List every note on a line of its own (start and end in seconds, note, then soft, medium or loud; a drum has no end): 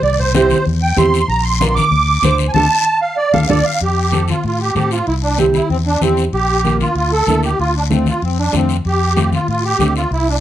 0.02 0.53 C2 medium
0.02 0.18 D5 medium
0.02 high conga soft
0.02 long guiro medium
0.19 0.33 C5 medium
0.19 low conga medium
0.34 0.56 C4 medium
0.34 0.57 E4 medium
0.34 0.57 G4 medium
0.34 0.65 C5 medium
0.34 high conga loud
0.34 short guiro medium
0.50 high conga medium
0.50 short guiro medium
0.66 0.91 E2 loud
0.66 long guiro medium
0.82 0.97 G5 medium
0.82 high conga soft
0.96 1.22 E2 medium
0.96 1.19 C4 medium
0.96 1.19 E4 medium
0.96 1.19 G4 medium
0.96 1.28 C6 medium
0.96 high conga medium
0.96 low conga medium
0.96 short guiro medium
1.14 short guiro medium
1.28 1.79 A#1 loud
1.28 1.44 A#5 medium
1.28 high conga soft
1.28 long guiro medium
1.43 1.74 C6 medium
1.60 1.82 D4 medium
1.60 1.83 F4 medium
1.60 1.83 A#4 medium
1.60 high conga loud
1.60 short guiro medium
1.75 2.37 D6 loud
1.75 high conga medium
1.75 short guiro medium
1.91 2.17 D2 loud
1.91 long guiro medium
2.08 high conga soft
2.22 2.48 D2 medium
2.22 2.45 D4 medium
2.22 2.45 F4 medium
2.22 2.46 C5 loud
2.22 high conga medium
2.22 short guiro medium
2.38 short guiro medium
2.49 2.51 G#5 medium
2.53 2.66 D2 loud
2.53 2.65 D4 medium
2.53 2.65 F4 loud
2.53 2.65 A4 loud
2.53 3.00 A5 loud
2.53 high conga loud
2.53 long guiro loud
3.01 3.17 F5 medium
3.17 3.33 D5 medium
3.33 3.45 D2 loud
3.33 3.44 D4 loud
3.33 3.44 F4 loud
3.33 3.44 A4 loud
3.33 3.49 F5 medium
3.33 high conga loud
3.33 long guiro loud
3.49 3.61 D2 medium
3.49 3.59 D4 loud
3.49 3.59 F4 loud
3.49 3.59 A4 medium
3.49 3.65 D5 medium
3.49 high conga loud
3.49 long guiro loud
3.65 3.80 F5 loud
3.81 4.31 F2 medium
3.81 4.26 G4 medium
3.81 long guiro medium
4.12 4.34 C4 medium
4.12 4.35 F4 medium
4.12 4.35 A4 medium
4.12 high conga medium
4.12 short guiro medium
4.28 4.44 F4 medium
4.28 high conga medium
4.28 short guiro medium
4.44 4.69 A2 medium
4.44 4.60 F4 medium
4.44 long guiro medium
4.61 4.74 G4 medium
4.75 5.00 A2 medium
4.75 4.98 C4 medium
4.75 4.98 F4 medium
4.75 4.90 G4 medium
4.75 4.98 A4 medium
4.75 high conga medium
4.75 short guiro medium
4.91 5.07 F4 medium
4.91 short guiro medium
5.07 5.58 C2 medium
5.07 5.14 E4 medium
5.07 long guiro medium
5.23 5.38 D4 medium
5.38 5.60 C4 medium
5.38 5.46 C4 medium
5.38 5.61 E4 medium
5.38 5.61 G4 medium
5.38 high conga medium
5.38 short guiro medium
5.54 5.69 E4 medium
5.54 high conga medium
5.54 short guiro medium
5.70 5.95 E2 medium
5.70 5.77 C4 medium
5.70 long guiro medium
5.86 6.01 D4 medium
6.01 6.27 E2 medium
6.01 6.24 C4 medium
6.01 6.24 E4 medium
6.01 6.24 G4 medium
6.01 high conga medium
6.01 short guiro medium
6.17 short guiro medium
6.33 6.83 A#1 medium
6.33 6.78 G4 loud
6.33 long guiro medium
6.64 6.86 A#3 medium
6.64 6.87 D4 medium
6.64 6.87 F4 medium
6.64 high conga medium
6.64 short guiro medium
6.80 6.95 F4 medium
6.80 high conga medium
6.80 short guiro medium
6.95 7.21 D2 medium
6.95 7.11 F4 medium
6.95 long guiro medium
7.12 7.41 A4 loud
7.27 7.52 D2 medium
7.27 7.50 A#3 medium
7.27 7.50 D4 medium
7.27 7.50 E4 medium
7.27 high conga medium
7.27 short guiro medium
7.43 7.58 G4 medium
7.43 short guiro medium
7.59 8.10 D2 medium
7.59 7.74 F4 loud
7.59 long guiro medium
7.77 7.84 D4 medium
7.90 8.12 A3 medium
7.90 8.08 C4 medium
7.90 8.12 D4 medium
7.90 8.13 F4 medium
7.90 high conga medium
7.90 short guiro medium
8.06 8.22 F4 medium
8.06 high conga medium
8.06 short guiro medium
8.22 8.47 F2 medium
8.22 8.38 C4 medium
8.22 long guiro medium
8.39 8.55 D4 medium
8.52 8.79 F2 medium
8.52 8.75 A3 medium
8.52 8.77 C4 medium
8.52 8.75 D4 medium
8.52 8.75 F4 medium
8.52 high conga medium
8.52 short guiro medium
8.69 short guiro medium
8.85 9.36 F2 medium
8.85 9.30 G4 medium
8.85 long guiro medium
9.16 9.38 A3 medium
9.16 9.39 C4 medium
9.16 9.39 F4 medium
9.16 high conga medium
9.16 short guiro medium
9.32 9.47 F4 medium
9.32 high conga medium
9.32 short guiro medium
9.48 9.73 A2 medium
9.48 9.63 F4 medium
9.48 long guiro medium
9.65 9.94 G4 loud
9.79 10.04 D2 medium
9.79 10.02 A3 medium
9.79 10.02 C4 medium
9.79 10.02 D4 medium
9.79 high conga medium
9.79 short guiro medium
9.96 10.11 F4 medium
9.96 short guiro medium
10.11 10.40 C2 medium
10.11 10.28 E4 medium
10.11 long guiro medium
10.29 10.36 D4 medium